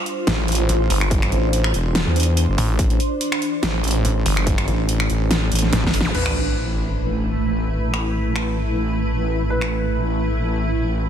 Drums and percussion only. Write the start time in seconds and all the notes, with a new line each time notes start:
0.06 closed hi-hat
0.27 snare, closed hi-hat
0.48 closed hi-hat
0.52 closed hi-hat
0.55 closed hi-hat
0.69 closed hi-hat
0.90 open hi-hat
1.01 finger snap
1.11 kick, closed hi-hat
1.22 finger snap, closed hi-hat
1.32 closed hi-hat
1.53 closed hi-hat
1.64 finger snap
1.74 closed hi-hat
1.95 snare, closed hi-hat
2.16 closed hi-hat
2.20 closed hi-hat
2.23 closed hi-hat
2.37 closed hi-hat
2.58 open hi-hat
2.79 kick, closed hi-hat
2.90 closed hi-hat
3.00 closed hi-hat
3.21 closed hi-hat
3.32 finger snap
3.42 closed hi-hat
3.63 snare, closed hi-hat
3.84 closed hi-hat
3.88 closed hi-hat
3.91 closed hi-hat
4.05 closed hi-hat
4.26 open hi-hat
4.37 finger snap
4.47 kick, closed hi-hat
4.58 finger snap, closed hi-hat
4.68 closed hi-hat
4.89 closed hi-hat
5.00 finger snap
5.10 closed hi-hat
5.31 snare, closed hi-hat
5.52 closed hi-hat
5.55 closed hi-hat
5.59 closed hi-hat
5.63 snare
5.73 snare, closed hi-hat
5.84 kick, snare
5.94 open hi-hat
6.01 snare
6.15 crash
6.26 finger snap
7.94 finger snap
8.36 finger snap
9.61 finger snap